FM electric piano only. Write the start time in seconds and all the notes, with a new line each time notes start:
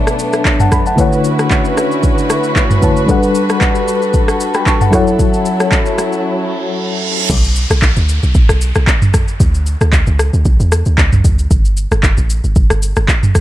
Already playing: B2 F#3 D4 A4 C#5 E5
0.60 F#5 A5
0.72 B5
0.87 F#5 A5
0.96 D3 A3 E4 B4 C#5
1.01 F#5
2.81 D3 A3 E4 B4 C#5 A5
3.06 G3 D4 A4 B4
3.11 F#5
4.55 G5 B5
4.66 A5 C#6
4.81 F#5 A5
4.90 F#3 E4 A4 C#5
4.95 F#5